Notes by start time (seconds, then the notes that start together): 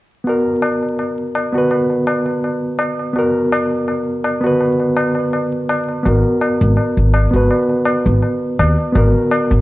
0.24 B3 F#4, tabla na
0.29 A#4
0.62 tabla na
0.82 tabla na
0.99 tabla na
1.35 tabla na
1.52 B3 F#4, tabla na
1.58 B4
1.71 tabla na
1.90 tabla na
2.07 tabla na
2.26 tabla na
2.44 tabla na
2.79 tabla na
2.99 tabla na
3.13 B3 F#4, tabla na
3.19 A#4
3.52 tabla na
3.71 tabla na
3.88 tabla na
4.24 tabla na
4.41 B3 F#4, tabla na
4.46 B4
4.60 tabla na
4.80 tabla na
4.96 tabla na
5.15 tabla na
5.33 tabla na
5.69 tabla na
5.88 tabla na
6.03 G#1 B3 F#4, tabla na
6.08 A#4
6.41 tabla na
6.61 G#1, tabla na
6.77 tabla na
6.97 G#1
7.14 tabla na
7.31 G#1 B3 F#4, tabla na
7.36 B4
7.51 tabla na
7.69 tabla na
7.85 tabla na
8.06 G#1, tabla na
8.22 tabla na
8.59 D#2, tabla na
8.78 tabla na
8.92 G#1 B3 F#4, tabla na
8.98 A#4
9.31 tabla na
9.51 G#1, tabla na